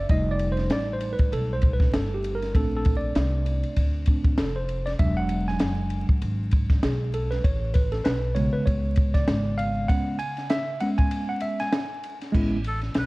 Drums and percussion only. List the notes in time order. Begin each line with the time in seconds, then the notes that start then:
0.09 kick, ride
0.39 ride
0.57 snare, ride
0.70 snare, hi-hat pedal, ride
1.00 ride
1.19 kick, ride
1.33 ride
1.62 kick, ride
1.80 kick, snare
1.94 snare, hi-hat pedal, ride
2.24 ride
2.42 snare, ride
2.55 kick, ride
2.85 kick, ride
3.15 snare, hi-hat pedal, ride
3.46 ride
3.63 ride
3.76 kick, ride
4.06 kick, ride
4.24 kick, ride
4.38 snare, hi-hat pedal, ride
4.69 ride
4.87 snare, ride
4.99 kick, ride
5.29 ride
5.48 snare
5.59 snare, hi-hat pedal, ride
5.90 ride
6.09 kick
6.22 ride
6.51 kick, ride
6.70 kick, snare, ride
6.83 snare, hi-hat pedal, ride
7.14 ride
7.32 snare, ride
7.44 kick, ride
7.74 kick, ride
7.92 snare, ride
8.05 snare, hi-hat pedal, ride
8.36 ride
8.67 kick, ride
8.96 kick, ride
9.15 kick, snare, ride
9.28 snare, hi-hat pedal, ride
9.59 ride
9.89 kick, ride
10.19 ride
10.37 snare, ride
10.50 snare, hi-hat pedal, ride
10.80 ride
10.98 kick, ride
11.11 ride
11.40 ride
11.60 snare, ride
11.72 snare, hi-hat pedal, ride
12.03 ride
12.21 snare, ride
12.34 kick, crash
12.64 ride
12.82 snare, ride
12.94 snare, hi-hat pedal, ride